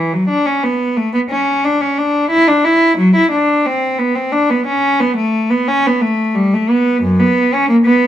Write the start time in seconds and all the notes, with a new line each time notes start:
Already playing: E3
0.13 F#3
0.29 D4
0.46 C#4
0.63 B3
0.96 A3
1.14 B3
1.30 C#4
1.64 D4
1.81 C#4
1.98 D4
2.30 E4
2.48 D4
2.65 E4
2.97 F#3
3.15 E4
3.31 D4
3.66 C4
3.98 B3
4.15 C4
4.32 D4
4.50 B3
4.66 C#4
5.00 B3
5.16 A3
5.50 B3
5.68 C#4
5.86 B3
6.01 A3
6.35 G3
6.53 A3
6.70 B3
7.02 F#2
7.19 B3
7.54 C#4
7.69 A#3
7.86 B3